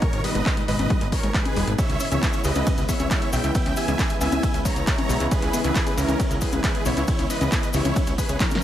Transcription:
Already playing: G#2 A#2 B2 D#3 D#4
0.02 G#3 A#4 C#5, kick, closed hi-hat
0.13 G#1, closed hi-hat
0.24 G3 B4 D#5, open hi-hat
0.35 G#1 G#3, closed hi-hat
0.46 C#4, kick, clap, closed hi-hat
0.57 G#3, closed hi-hat
0.68 G#1 G#3 B4 D#5, open hi-hat
0.79 G#1, closed hi-hat, high conga
0.90 G3, kick, closed hi-hat
1.01 G#1 G#3, closed hi-hat
1.12 C#4 A#4 C#5, kick, open hi-hat
1.23 G#1 G#3, closed hi-hat
1.34 G#3 G#4 B4, kick, clap, closed hi-hat
1.45 closed hi-hat, high conga
1.56 D#1 G3, open hi-hat
1.67 G#1 G#3, closed hi-hat
1.78 C#3 E3 G#3 B3 E4 G4 C#5 E5, kick, closed hi-hat, ride, cabasa
1.89 C#2 C#4, closed hi-hat
2.00 C#4, open hi-hat, cabasa
2.12 C#2 C#5 E5, closed hi-hat, high conga, cabasa
2.22 B3, kick, clap, closed hi-hat, ride, cabasa
2.33 C#4, closed hi-hat, cabasa
2.44 C#2 G4 B4 D#5, open hi-hat, cabasa
2.55 C#2 C#4, closed hi-hat, high conga, cabasa
2.67 C#4, kick, closed hi-hat, ride, cabasa
2.78 C#2, closed hi-hat, cabasa
2.89 B3 C#5 E5, kick, open hi-hat, cabasa
3.00 C#2 C#4, closed hi-hat, high conga, cabasa
3.11 G4 C#5 E5, kick, clap, closed hi-hat, ride, cabasa
3.22 C#4, closed hi-hat
3.33 B1 C#4 E5 G5, open hi-hat, cabasa
3.44 C#2, closed hi-hat, cabasa
3.55 B3 E5 G5, kick, closed hi-hat, ride, cabasa
3.66 C#2 C#4, closed hi-hat
3.76 G4 E5 G#5, open hi-hat, cabasa
3.88 C#2 C#4, closed hi-hat, cabasa
3.99 C#4, kick, clap, closed hi-hat, ride, cabasa
4.10 closed hi-hat, cabasa
4.21 C#2 B3 E5 G#5, open hi-hat, cabasa
4.32 C#2 C#4, closed hi-hat, high conga, cabasa
4.43 G4, kick, closed hi-hat, ride, cabasa
4.54 C#2 C#4, closed hi-hat, cabasa
4.65 C#4 C#5 A#5, kick, open hi-hat, cabasa
4.76 C#2, closed hi-hat, cabasa
4.87 B3 C#5 A#5, kick, clap, closed hi-hat, ride, cabasa
4.98 C#4, closed hi-hat, high conga
5.09 B1 G4, open hi-hat, cabasa
5.20 C#2 C#4, closed hi-hat, cabasa
5.31 C#4 G#4 B4, kick, closed hi-hat, ride, cabasa
5.42 C#2, closed hi-hat
5.53 B3, open hi-hat, cabasa
5.64 C#2 C#4 G#4 B4, closed hi-hat, high conga, cabasa
5.75 G4, kick, clap, closed hi-hat, ride, cabasa
5.87 C#4, closed hi-hat, cabasa
5.97 C#2 C#4 A#4, open hi-hat, cabasa
6.08 C#2, closed hi-hat, high conga, cabasa
6.20 B3, kick, closed hi-hat, ride, cabasa
6.30 C#2 C#4, closed hi-hat, cabasa
6.41 G4 G#4 B4, kick, open hi-hat, cabasa
6.52 C#2 C#4, closed hi-hat, high conga, cabasa
6.63 C#4 G#4 B4, kick, clap, closed hi-hat, ride, cabasa
6.75 closed hi-hat
6.85 B1 B3 E4 C#5, open hi-hat, cabasa
6.97 C#2 C#4, closed hi-hat, cabasa
7.07 E4 G4 C#5, kick, closed hi-hat, ride, cabasa
7.19 C#2 C#4, closed hi-hat
7.30 C#4 B4 D#5, open hi-hat, cabasa
7.41 C#2, closed hi-hat, high conga, cabasa
7.52 B3, kick, clap, closed hi-hat, ride, cabasa
7.63 C#4, closed hi-hat, cabasa
7.73 C#2 E4 G4 C#5, open hi-hat, cabasa
7.85 C#2 C#4, closed hi-hat, high conga, cabasa
7.96 C#4, kick, closed hi-hat, ride, cabasa
8.07 C#2, closed hi-hat, cabasa
8.18 G#4 B4, kick, open hi-hat, cabasa
8.29 C#2 C#5, closed hi-hat, cabasa
8.40 C#4 E4 A#4, kick, snare, clap, closed hi-hat, ride, cabasa
8.51 C#3, closed hi-hat, high conga, cabasa
8.55 snare

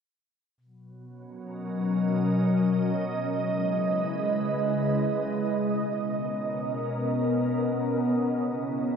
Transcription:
0.57 B2
0.65 F#3
1.00 C#4
1.19 A#4
1.27 D#5
3.04 C#3
3.11 G#3
3.24 E4
3.49 B4
5.52 B2
5.73 C#4
5.85 B3
6.04 A#4
7.99 C#3
8.24 E4

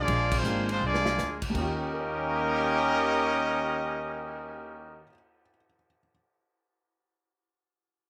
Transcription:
Already playing: F3 G#3 D4
0.00 A#3 F4 G#4 D5
0.08 A#1, kick, ride
0.32 F3 G#3 C4, kick, crash
0.36 A#3 F4 G#4 C5
0.43 G#1 A#3 C4 D4 F4 G#4, hi-hat pedal
0.69 G#3 C4 D4 F4 C5, ride
0.81 C2 F3 G#3 D4
0.85 A#3 F4 G#4 D5
0.94 snare
1.05 snare
1.18 D2, snare, hi-hat pedal
1.42 kick, crash
1.50 D#2 D#3
1.54 D#2 D#3 A#3 C#4 G4 A#4 D#5, kick, crash
1.59 F4 G4
1.79 cymbal swell
1.93 A#4
2.00 C#5
2.09 F5
2.18 A#5
2.28 C#6
2.39 F6
2.50 A#6
2.63 C#7

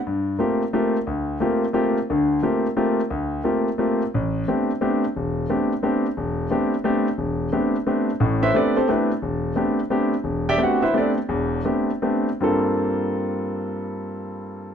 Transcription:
0.07 G2
0.39 A3 A#3 C4 F4 G4
0.73 A3 A#3 C4 F4 G4
1.07 D2
1.40 A3 A#3 C4 F4 G4
1.73 A3 A#3 C4 F4 G4
2.10 D2 D3
2.43 A3 A#3 C4 F4 G4
2.77 A3 A#3 C4 F4 G4
3.10 D2
3.44 A3 A#3 C4 F4 G4
3.78 A3 A#3 C4 F4 G4
4.14 A1
4.48 A3 B3 C4 D4 G4
4.81 A3 B3 C4 D4 G4
5.16 E1
5.50 A3 B3 C4 D4 G4
5.83 A3 B3 C4 D4 G4
6.17 E1
6.50 A3 B3 C4 D4 G4
6.84 A3 B3 C4 D4 G4
7.18 E1
7.52 A3 B3 C4 D4 G4
7.87 A3 B3 C4 D4 G4
8.20 A1 A2
8.42 E4 B4 C5 E5
8.54 A3 B3 C4 D4 G4 A4 B4 D5
8.77 C4 G4 A4 C5
8.88 A3 B3 C4 D4 E4 G4 B4
9.22 E1
9.56 A3 B3 C4 D4 G4
9.90 A3 B3 C4 D4 G4
10.24 E1
10.49 G4 D5 E5 G5
10.58 A3 B3 C4 D4 G4
10.63 F#4 F#5
10.82 E4 B4 C5 E5
10.94 A3 B3 C4 D4 G4 D5
10.98 D4 A4 B4
11.29 E1 E2
11.65 A3 B3 C4 D4 G4
12.02 A3 B3 C4 D4 G4
12.40 G2 G3 A#3 C4 F4 A4

